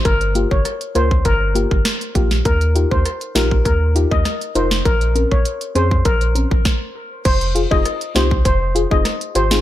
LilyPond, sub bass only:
\new Staff \with { instrumentName = "Sub bass" } { \clef bass \time 4/4 \key f \minor \tempo 4 = 100 g,,8. g,,16 r8 des,8 g,,8. g,,16 r8 bes,,8 | ees,8. ees,16 r8 bes,,8 ees,8. ees,16 r8 f,,8 | bes,,8. bes,,16 r8 f,8 bes,,8. bes,,16 r4 | f,,8. f,,16 r8 c,8 f,,8. f,,16 r8 aes,,8 | }